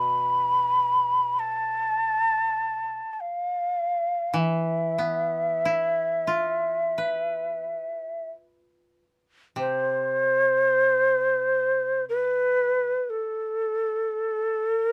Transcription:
0.00 2.99 B2 soft
0.00 1.41 B5 medium
1.39 3.13 A5 medium
3.13 3.22 A5 soft
3.20 4.40 F5 medium
4.34 7.72 E3 soft
4.38 8.28 E5 medium
4.98 7.64 B3 soft
5.65 8.35 E4 soft
6.27 9.02 F4 soft
6.98 9.73 B4 soft
9.56 12.94 C3 soft
9.56 12.05 C5 medium
12.09 13.11 B4 medium
13.10 14.82 A4 medium
14.82 14.92 A#4 medium

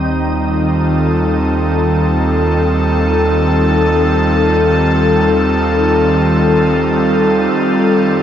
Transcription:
0.00 7.48 D#2 medium
0.00 8.23 D#3 medium
0.00 8.23 G3 medium
0.00 8.23 C4 medium
0.00 8.23 D#4 medium
0.16 8.23 F4 medium
0.42 8.23 A4 medium
7.55 8.23 F2 medium

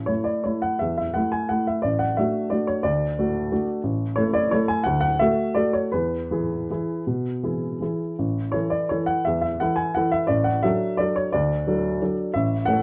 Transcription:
0.00 0.11 A1 soft
0.06 0.42 A3 soft
0.06 0.42 E4 soft
0.06 0.26 C#5 soft
0.24 0.44 D5 soft
0.44 0.78 A3 soft
0.44 0.78 E4 soft
0.44 0.63 C#5 soft
0.62 0.80 F#5 soft
0.79 1.15 E2 soft
0.79 0.96 E5 soft
0.98 1.16 E5 soft
1.14 1.47 A3 soft
1.14 1.47 E4 soft
1.14 1.32 F#5 medium
1.32 1.50 G#5 medium
1.49 1.81 A3 soft
1.49 1.81 E4 soft
1.49 1.66 F#5 medium
1.67 1.84 E5 soft
1.82 2.16 A1 soft
1.82 1.99 D5 soft
1.99 2.16 F#5 soft
2.17 2.48 A3 soft
2.17 2.49 D4 soft
2.17 2.49 F#4 soft
2.17 2.51 E5 medium
2.50 2.82 A3 soft
2.50 2.82 D4 soft
2.50 2.82 F#4 soft
2.50 2.67 D5 soft
2.67 2.84 C#5 soft
2.83 3.17 D2 soft
2.83 3.67 D5 medium
3.19 3.48 A3 soft
3.19 3.48 D4 soft
3.19 3.48 F#4 soft
3.52 3.81 A3 soft
3.52 3.81 D4 soft
3.52 3.81 F#4 soft
3.83 4.16 A1 soft
4.16 4.49 A3 soft
4.16 4.49 E4 soft
4.16 4.49 A4 soft
4.16 4.34 C#5 medium
4.34 4.52 D5 medium
4.51 4.83 A3 soft
4.51 4.83 E4 soft
4.51 4.83 A4 soft
4.51 4.69 C#5 medium
4.68 4.85 G#5 medium
4.83 5.19 D2 soft
4.83 4.99 F#5 medium
5.00 5.19 F#5 medium
5.19 5.53 A3 soft
5.19 5.53 F#4 soft
5.19 5.53 A4 soft
5.19 5.56 E5 medium
5.55 5.89 A3 soft
5.55 5.89 F#4 soft
5.55 5.90 A4 soft
5.55 5.74 D5 medium
5.73 5.92 C#5 medium
5.92 6.29 E2 soft
5.92 7.99 B4 medium
6.31 6.65 E3 soft
6.31 6.66 E4 soft
6.31 6.66 G#4 soft
6.70 7.03 E3 soft
6.70 7.03 E4 soft
6.70 7.03 G#4 soft
7.07 7.42 B2 soft
7.43 7.77 E3 soft
7.43 7.77 E4 soft
7.43 7.78 G#4 soft
7.81 8.14 E3 soft
7.81 8.15 E4 soft
7.81 8.15 G#4 soft
8.19 8.53 A1 soft
8.52 8.86 E3 soft
8.52 8.86 E4 soft
8.52 8.86 A4 soft
8.52 8.71 C#5 medium
8.70 8.89 D5 soft
8.89 9.23 E3 soft
8.89 9.23 E4 soft
8.89 9.23 A4 soft
8.89 9.08 C#5 soft
9.06 9.25 F#5 medium
9.25 9.60 E2 soft
9.25 9.40 E5 soft
9.41 9.60 E5 medium
9.60 9.93 E3 soft
9.60 9.94 E4 soft
9.60 9.94 A4 soft
9.60 9.79 F#5 medium
9.76 9.95 G#5 medium
9.95 10.27 E3 soft
9.95 10.27 E4 soft
9.95 10.27 A4 soft
9.95 10.13 F#5 medium
10.12 10.29 E5 medium
10.27 10.63 A1 soft
10.27 10.46 D5 medium
10.44 10.64 F#5 medium
10.63 10.96 F#3 soft
10.63 10.97 D4 soft
10.63 10.97 A4 soft
10.63 10.99 E5 medium
10.97 11.30 F#3 soft
10.97 11.30 D4 soft
10.97 11.30 A4 soft
10.97 11.16 D5 medium
11.16 11.33 C#5 medium
11.32 11.66 D2 soft
11.32 12.16 D5 medium
11.67 11.97 F#3 soft
11.67 11.97 D4 soft
11.67 11.98 A4 soft
12.02 12.31 F#3 soft
12.02 12.31 D4 soft
12.02 12.32 A4 soft
12.34 12.67 A1 soft
12.34 12.67 E5 medium
12.65 12.82 A3 soft
12.65 12.82 C#4 soft
12.65 12.82 A4 soft
12.65 12.82 F#5 medium

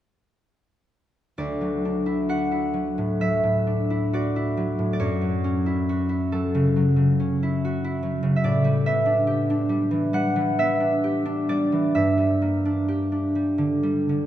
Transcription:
1.38 5.05 D2 soft
1.38 4.12 D5 medium
1.61 2.72 F#3 soft
1.85 3.66 D4 soft
2.06 2.50 E4 soft
2.29 4.12 F#4 soft
2.29 6.19 F#5 medium
2.51 3.89 E4 soft
2.73 3.20 F#3 soft
2.98 3.42 A2 soft
3.21 4.56 F#3 soft
3.21 7.11 E5 medium
3.43 4.78 A2 soft
3.67 5.05 D4 soft
3.90 4.35 E4 soft
4.13 5.88 F#4 soft
4.13 4.92 D5 medium
4.36 5.65 E4 soft
4.57 5.20 F#3 soft
4.79 5.04 A2 soft
4.93 5.05 D5 soft
4.99 8.48 F#2 soft
4.99 8.47 C#5 medium
5.21 6.31 F#3 soft
5.44 7.18 C#4 soft
5.66 6.08 E4 soft
5.89 7.63 F#4 soft
6.09 7.41 E4 soft
6.32 6.75 F#3 soft
6.32 10.22 A4 medium
6.54 6.95 C#3 soft
6.76 8.01 F#3 soft
6.96 8.21 C#3 soft
7.20 8.49 C#4 soft
7.43 7.83 E4 soft
7.65 8.50 F#4 soft
7.84 11.74 E4 soft
8.03 8.48 F#3 soft
8.23 8.47 C#3 soft
8.36 8.48 E5 medium
8.44 11.97 A2 medium
8.44 11.48 D5 medium
8.64 9.68 G3 soft
8.86 10.58 B3 soft
8.86 10.57 E5 medium
9.06 9.49 D4 soft
9.27 11.03 G4 medium
9.50 10.79 D4 medium
9.69 10.12 G3 soft
9.91 10.35 E3 soft
10.13 11.48 G3 soft
10.13 10.88 F#5 medium
10.36 11.71 E3 soft
10.59 11.98 B3 soft
10.59 11.93 E5 medium
10.80 11.24 D4 soft
11.04 12.87 G4 soft
11.25 12.64 D4 soft
11.49 12.16 G3 soft
11.49 14.26 D5 medium
11.72 11.98 E3 soft
11.95 14.26 G2 soft
11.95 14.26 E5 medium
12.18 13.34 G3 soft
12.42 14.26 A#3 soft
12.65 13.11 D4 soft
12.88 14.26 G4 soft
13.12 14.26 D4 soft
13.35 13.82 G3 soft
13.58 14.08 D3 soft
13.83 14.26 G3 soft
14.09 14.26 D3 soft

